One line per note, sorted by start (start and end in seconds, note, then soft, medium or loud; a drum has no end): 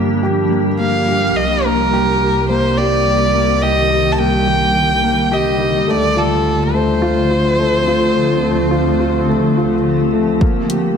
0.00 1.33 G1 medium
0.00 1.32 F3 medium
0.00 5.85 G3 medium
0.00 0.51 A#3 medium
0.00 5.85 A#3 medium
0.00 1.32 D4 medium
0.00 0.23 G4 medium
0.00 5.85 G4 medium
0.23 0.50 G4 medium
0.51 0.67 A#3 medium
0.79 1.06 A#3 medium
0.79 1.37 F5 medium
1.08 1.24 G4 medium
1.35 5.86 C2 medium
1.35 5.85 D#3 medium
1.35 3.60 C4 medium
1.35 1.66 D#5 medium
1.64 1.91 A#3 medium
1.64 2.49 A#4 medium
1.93 2.19 G4 medium
2.21 2.48 G4 medium
2.49 2.76 A#3 medium
2.49 2.79 C5 medium
2.77 2.94 G4 medium
2.77 3.64 D5 medium
3.35 3.62 A#3 medium
3.62 5.86 D3 medium
3.62 3.89 G4 medium
3.62 4.13 D#5 loud
3.91 4.18 G4 medium
4.12 4.20 A5 medium
4.19 4.46 A#3 medium
4.19 5.34 G5 loud
4.47 4.63 G4 medium
5.04 5.31 A#3 medium
5.32 5.58 G4 medium
5.32 5.92 D#5 medium
5.60 5.87 G4 medium
5.88 10.39 D2 medium
5.88 10.38 D3 medium
5.88 10.38 F3 medium
5.88 6.15 A3 medium
5.88 10.38 A3 medium
5.88 10.38 C4 medium
5.88 8.13 F4 medium
5.88 6.19 D5 medium
6.16 6.33 F4 medium
6.16 6.76 A4 medium
6.74 7.01 A3 medium
6.74 9.85 C5 medium
7.02 7.29 F4 medium
7.31 7.57 F4 medium
7.59 7.86 A3 medium
7.87 8.03 F4 medium
8.15 10.40 G4 medium
8.43 8.70 A3 medium
8.71 8.98 F4 medium
9.00 9.27 F4 medium
9.29 9.56 A3 medium
9.57 9.73 F4 medium
10.13 10.40 A3 medium
10.41 10.97 D#3 medium
10.41 10.97 G3 medium
10.41 10.69 A#3 medium
10.41 10.97 A#3 medium
10.41 10.97 C4 medium
10.41 10.97 G4 medium
10.41 kick medium
10.68 10.85 G4 medium
10.68 closed hi-hat medium